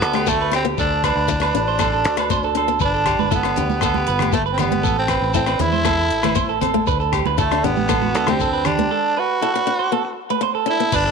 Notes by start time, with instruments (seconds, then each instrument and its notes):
Already playing: tenor saxophone B3
0.01 fingered electric bass D2, clean electric guitar A4, closed hi-hat, shekere
0.13 steel-string acoustic guitar A3, clean electric guitar G4, cross-stick, low agogo
0.27 tenor saxophone A3, steel-string acoustic guitar B3, clean electric guitar A4, kick, shekere
0.40 clean electric guitar B4, shekere
0.52 tenor saxophone C4, steel-string acoustic guitar D4, clean electric guitar G4, cross-stick, closed hi-hat, low agogo, shekere
0.65 steel-string acoustic guitar B3
0.78 fingered electric bass D2, tenor saxophone D4, clean electric guitar A4, kick, shekere
0.91 shekere
1.04 tenor saxophone D4, clean electric guitar B4, kick, cross-stick, closed hi-hat, low agogo, shekere
1.15 fingered electric bass D2, shekere
1.28 steel-string acoustic guitar E4, muted clean electric guitar stroke, kick, shekere
1.40 steel-string acoustic guitar D4, clean electric guitar B4, cross-stick, low agogo, shekere
1.54 fingered electric bass A1, steel-string acoustic guitar D4, tenor saxophone D4, closed hi-hat, shekere
1.67 clean electric guitar C5, shekere
1.79 steel-string acoustic guitar B3, clean electric guitar A4, kick, cross-stick, low agogo, shekere
1.93 clean electric guitar A4, shekere
2.05 fingered electric bass D2, closed hi-hat, shekere
2.17 steel-string acoustic guitar A3, clean electric guitar B4, cross-stick, low agogo, shekere
2.30 steel-string acoustic guitar B3, clean electric guitar C5, kick, shekere
2.43 clean electric guitar A4, shekere
2.55 steel-string acoustic guitar D4, clean electric guitar A4, closed hi-hat, low agogo
2.68 steel-string acoustic guitar B3, shekere
2.80 fingered electric bass G1, clean electric guitar B4, kick, shekere
2.84 tenor saxophone D4
2.94 clean electric guitar A4, shekere
3.06 clean electric guitar G4, kick, cross-stick, closed hi-hat, low agogo, shekere
3.19 fingered electric bass G1, clean electric guitar B4, high conga, shekere
3.31 tenor saxophone B3, steel-string acoustic guitar E4, clean electric guitar A4, kick, shekere
3.43 steel-string acoustic guitar D4, cross-stick, low agogo, shekere
3.56 fingered electric bass D2, steel-string acoustic guitar D4, clean electric guitar G4, closed hi-hat, low conga, shekere
3.70 high conga, shekere
3.81 steel-string acoustic guitar B3, tenor saxophone B3, clean electric guitar A4, kick, cross-stick, low agogo, shekere
3.94 clean electric guitar G4, high conga, shekere
4.07 fingered electric bass G1, clean electric guitar B4, closed hi-hat, shekere
4.19 steel-string acoustic guitar A3, clean electric guitar G4, cross-stick, low conga, low agogo
4.33 tenor saxophone A3, steel-string acoustic guitar B3, clean electric guitar A4, kick, shekere
4.46 clean electric guitar B4, shekere
4.52 tenor saxophone C4
4.58 tenor saxophone B3, steel-string acoustic guitar D4, clean electric guitar G4, cross-stick, closed hi-hat, low conga, low agogo, shekere
4.71 steel-string acoustic guitar B3, high conga
4.83 fingered electric bass A1, clean electric guitar A4, kick, shekere
4.97 tenor saxophone C4, shekere
5.08 clean electric guitar B4, kick, cross-stick, closed hi-hat, low agogo, shekere
5.21 fingered electric bass A1, shekere
5.34 tenor saxophone C4, steel-string acoustic guitar E4, clean electric guitar A4, kick, shekere
5.46 steel-string acoustic guitar D4, clean electric guitar B4, cross-stick, low agogo, shekere
5.59 fingered electric bass E2, steel-string acoustic guitar D4, tenor saxophone E4, closed hi-hat, low conga, shekere
5.72 clean electric guitar C5, high conga, shekere
5.85 steel-string acoustic guitar B3, clean electric guitar A4, kick, cross-stick, low agogo, shekere
5.98 clean electric guitar A4, shekere
6.11 fingered electric bass A1, closed hi-hat
6.23 steel-string acoustic guitar A3, clean electric guitar B4, cross-stick, low conga, low agogo
6.35 steel-string acoustic guitar B3, clean electric guitar C5, kick, shekere
6.49 clean electric guitar A4, shekere
6.61 steel-string acoustic guitar C4, clean electric guitar A4, closed hi-hat, low conga, low agogo, shekere
6.74 steel-string acoustic guitar A3, high conga
6.87 fingered electric bass D2, clean electric guitar B4, kick, shekere
7.00 clean electric guitar A4, shekere
7.12 clean electric guitar G4, kick, cross-stick, closed hi-hat, low agogo, shekere
7.26 fingered electric bass D2, clean electric guitar B4, high conga, shekere
7.38 tenor saxophone A3, steel-string acoustic guitar E4, clean electric guitar A4, kick, shekere
7.51 steel-string acoustic guitar D4, cross-stick, low agogo, shekere
7.64 fingered electric bass A1, tenor saxophone B3, steel-string acoustic guitar D4, clean electric guitar G4, closed hi-hat, low conga, shekere
7.76 high conga, shekere
7.89 steel-string acoustic guitar B3, clean electric guitar A4, kick, cross-stick, low agogo, shekere
8.01 clean electric guitar F#4, high conga, shekere
8.15 fingered electric bass D2, clean electric guitar A4, closed hi-hat, shekere
8.27 steel-string acoustic guitar A3, tenor saxophone C4, clean electric guitar G4, cross-stick, low conga, low agogo
8.40 clean electric guitar A4, kick, shekere
8.53 clean electric guitar B4, shekere
8.65 tenor saxophone D4, clean electric guitar G4, cross-stick, closed hi-hat, low conga, low agogo, shekere
8.78 steel-string acoustic guitar B3, high conga
8.91 clean electric guitar A4
9.17 tenor saxophone F#4, clean electric guitar B4
9.42 steel-string acoustic guitar E4, clean electric guitar A4
9.54 steel-string acoustic guitar D4, clean electric guitar B4
9.67 steel-string acoustic guitar D4
9.79 clean electric guitar C5
9.92 steel-string acoustic guitar B3, clean electric guitar A4
10.05 muted clean electric guitar stroke
10.30 steel-string acoustic guitar A3, clean electric guitar B4
10.41 steel-string acoustic guitar B3, clean electric guitar C5
10.55 clean electric guitar A4
10.66 steel-string acoustic guitar D4, tenor saxophone E4, clean electric guitar A4
10.80 steel-string acoustic guitar B3
10.92 fingered electric bass G1, tenor saxophone D4, clean electric guitar B4, kick, closed hi-hat, crash, shekere
11.06 clean electric guitar A4